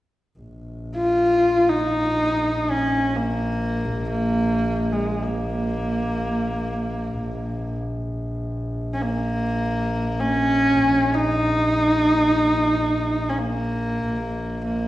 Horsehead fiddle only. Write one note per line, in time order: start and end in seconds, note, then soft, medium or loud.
0.96 1.71 F4 medium
1.69 2.72 D#4 medium
2.71 3.18 C#4 medium
3.16 4.09 A#3 medium
4.10 4.94 A#3 medium
4.93 5.23 G#3 medium
5.22 7.77 A#3 medium
8.94 9.03 C#4 medium
9.02 10.21 A#3 medium
10.20 11.16 C#4 medium
11.14 13.31 D#4 medium
13.29 13.40 C#4 soft
13.38 14.63 A#3 medium
14.65 14.88 A#3 medium